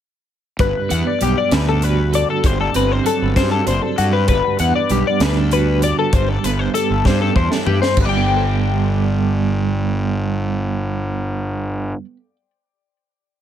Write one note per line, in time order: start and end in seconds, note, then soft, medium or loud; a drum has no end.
0.59 0.71 G1 medium
0.59 2.42 G2 medium
0.59 0.91 B4 medium
0.59 kick medium
0.59 closed hi-hat medium
0.90 1.03 E2 medium
0.90 2.40 B3 medium
0.90 1.07 F#5 medium
0.90 closed hi-hat medium
1.07 1.22 D5 medium
1.21 1.33 B1 medium
1.21 2.40 G3 medium
1.21 1.37 G4 medium
1.21 closed hi-hat medium
1.38 1.53 D5 medium
1.51 2.23 D2 medium
1.51 2.40 D3 medium
1.51 1.68 B4 medium
1.51 snare medium
1.51 closed hi-hat medium
1.69 1.83 A4 medium
1.82 2.46 F#4 soft
1.82 2.14 B4 medium
1.82 closed hi-hat medium
2.13 2.46 A4 medium
2.13 2.29 D5 medium
2.13 closed hi-hat medium
2.30 2.46 A4 medium
2.43 2.68 G1 medium
2.43 3.34 G2 medium
2.43 2.60 C5 medium
2.43 kick medium
2.43 closed hi-hat medium
2.61 2.75 A4 medium
2.74 2.99 G1 medium
2.74 4.25 C4 medium
2.74 2.92 B4 medium
2.74 closed hi-hat medium
2.92 3.06 C5 medium
3.04 4.24 F#3 medium
3.04 3.36 A4 medium
3.04 closed hi-hat medium
3.22 3.33 G1 medium
3.35 4.28 G2 medium
3.35 3.60 G2 medium
3.35 3.51 C5 medium
3.35 kick medium
3.35 snare medium
3.35 closed hi-hat medium
3.52 3.67 A4 medium
3.67 3.79 F#1 medium
3.67 5.51 D4 medium
3.67 3.82 C5 medium
3.67 closed hi-hat medium
3.82 3.98 A4 medium
3.98 4.29 G2 medium
3.98 4.13 F#4 medium
3.98 4.25 A4 soft
3.98 closed hi-hat medium
4.13 4.28 B4 medium
4.28 4.40 G1 medium
4.28 6.13 G2 medium
4.28 4.59 B4 medium
4.28 kick medium
4.28 closed hi-hat medium
4.59 4.71 E2 medium
4.59 6.46 B3 medium
4.59 4.75 F#5 medium
4.59 closed hi-hat medium
4.75 4.90 D5 medium
4.90 5.02 B1 medium
4.90 6.76 G3 medium
4.90 5.06 G4 medium
4.90 closed hi-hat medium
5.07 5.22 D5 medium
5.20 5.92 D2 medium
5.20 6.10 D3 medium
5.20 5.38 B4 medium
5.20 snare medium
5.20 closed hi-hat medium
5.38 5.52 A4 medium
5.51 6.10 F#4 medium
5.51 5.83 B4 medium
5.51 closed hi-hat soft
5.82 6.00 G4 soft
5.82 5.98 D5 medium
5.82 closed hi-hat medium
5.99 6.13 A4 medium
5.99 6.14 A4 soft
6.13 6.36 G1 medium
6.13 7.05 G2 medium
6.13 6.29 C5 medium
6.13 kick medium
6.13 closed hi-hat medium
6.29 6.44 A4 medium
6.43 6.67 G1 medium
6.43 7.95 B3 medium
6.43 6.59 B4 medium
6.43 closed hi-hat medium
6.59 6.74 C5 medium
6.74 7.95 G3 medium
6.74 7.06 A4 medium
6.74 closed hi-hat medium
6.90 7.02 G1 medium
7.05 7.29 G2 medium
7.05 7.96 G2 medium
7.05 7.21 C5 medium
7.05 kick medium
7.05 snare soft
7.22 7.36 A4 medium
7.36 7.48 E2 medium
7.36 7.94 E4 soft
7.36 7.51 C5 medium
7.36 kick medium
7.51 7.67 A4 medium
7.51 snare medium
7.67 7.78 G2 medium
7.67 7.81 G4 medium
7.67 7.94 B4 soft
7.67 floor tom medium
7.82 7.97 C5 medium
7.82 snare medium
7.97 11.92 G1 medium
7.97 11.96 G2 medium
7.97 kick medium
7.97 crash medium
8.01 8.05 B4 medium
8.01 12.04 D5 medium
8.06 12.06 G3 medium
8.06 12.04 G5 medium
8.17 12.16 B3 medium
8.37 12.36 A4 soft